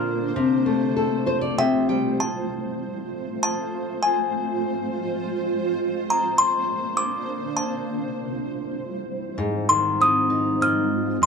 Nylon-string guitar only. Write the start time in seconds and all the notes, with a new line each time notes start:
Already playing: A#2 D4 F4 A#4
0.36 C3
0.66 A3
0.97 A4
1.26 C5
1.41 D5
1.58 C3 E5
1.89 G3 G5
9.38 G#2
9.70 D#3
10.00 C4
10.30 D#4
10.61 C4
11.22 F2